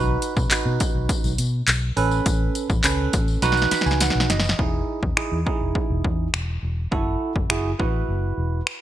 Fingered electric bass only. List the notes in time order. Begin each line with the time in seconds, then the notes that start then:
Already playing: B1
0.37 B2
0.51 muted fingered electric bass stroke
0.66 B2
0.95 B1
1.24 B1
1.38 B2
1.68 B1
1.97 A1
2.26 A1
2.70 A1
2.84 C#2
3.14 A1
3.42 B1
3.72 muted fingered electric bass stroke
3.86 C#2
4.15 B1
4.30 F#1
4.59 E1
5.03 E2
5.17 muted fingered electric bass stroke
5.32 E2
5.61 E1
5.90 E1
6.04 E2
6.34 E1
6.63 E1
6.92 F#1
7.36 F#1
7.50 F#1
7.80 A1
8.08 F#1
8.38 E1